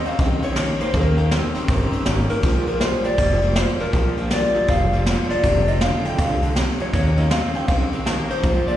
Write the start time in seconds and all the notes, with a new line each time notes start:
0.05 D#3 A#3 C4 C#4 G4 F5, muted upright bass stroke, ride
0.18 A#1 D#3 A#3 C4 C#4 G4 D#5, kick, ride
0.42 D#3 A#3 C4 C#4 G4 C#5, ride
0.56 D#3 A#3 C#4 G4, snare, ride
0.79 D#3 A#3 C#4 G4 C5, muted upright bass stroke, ride
0.94 D#2 D#3 A#3 C#4 G4 A#4, kick, ride
1.17 D#3 A#3 C#4 G4, ride
1.31 D#3 A#3 C4 C#4 G4, snare, ride
1.54 D#3 A#3 C4 C#4 G4, muted upright bass stroke, ride
1.68 G1 D#3 A#3 C4 C#4 G4, kick, ride
1.92 D#3 A#3 C4 C#4 G4, muted upright bass stroke, ride
2.05 G#1 D#3 A#3 C#4 G4, snare, ride
2.29 D#3 A#3 C#4 G4 A#4, muted upright bass stroke, ride
2.43 A#1 A#2 F3 G#3 D4 F4, kick, ride
2.66 A#2 F3 G#3 D4 F4 A#4, ride
2.80 A#2 F3 G3 G#3 D4 F4 C5, snare, ride
3.04 A#2 G3 G#3 D4 F4 D5, muted upright bass stroke, ride
3.18 F1 A#2 F3 G3 G#3 D4 F4, kick, ride
3.41 A#2 G3 G#3 D4 F4, ride
3.56 A#2 F3 G#3 D4 F4 C5, snare, ride
3.79 A#2 F3 G#3 D4 F4 A#4, muted upright bass stroke, ride
3.93 A#1 A#2 F3 G#3 D4 F4, kick, ride
4.17 A#2 F3 G#3 D4 F4, ride
4.30 A#2 F3 G3 G#3 D4 F4 D5, snare, ride
4.54 A#2 G3 G#3 D4 F4, muted upright bass stroke, ride
4.68 F1 A#2 F3 G3 G#3 D4 F4 F5, kick, ride
4.92 A#2 G3 G#3 D4 F4, ride
5.05 A#2 F3 G#3 D4, snare, ride
5.29 A#2 F3 G#3 D4 F4 D5, muted upright bass stroke, ride
5.44 F1 F2 C3 D#3 A3 D#4 F4, kick, ride
5.67 F2 C3 D#3 A3 D#4 F4 D#5, ride
5.80 F2 D3 D#3 A3 F5, snare, ride
6.04 F2 D3 D#3 A3 D#4 F4 G5, muted upright bass stroke, ride
6.18 C2 F2 C3 D3 D#3 A3 D#4 F4 F5, kick, ride
6.42 F2 D3 D#3 A3 D#4 F4, ride
6.55 F2 C3 D#3 A3 D#4 F4, snare, ride
6.79 F2 C3 D#3 A3 D#4 F4 C#5, muted upright bass stroke, ride
6.93 D#2 D#3 A#3 C#4 G4 C#5, kick, ride
7.17 D#3 A#3 C#4 G4 D#5, ride
7.30 D#3 A#3 C4 C#4 G4 F5, snare, ride
7.54 D#3 A#3 C4 C#4 G4 G5, muted upright bass stroke, ride
7.68 A#1 D#3 A#3 C4 C#4 G4 F5, kick, ride
7.92 D#3 A#3 C4 C#4 G4, ride
8.05 D#3 A#3 C#4 G4, snare, ride
8.29 D#3 A#3 C#4 G4 C5, muted upright bass stroke, ride
8.43 A#1 A#2 F3 G#3 D4 F4, kick, ride
8.66 A#2 F3 G#3 D4 F4 D5, muted upright bass stroke, ride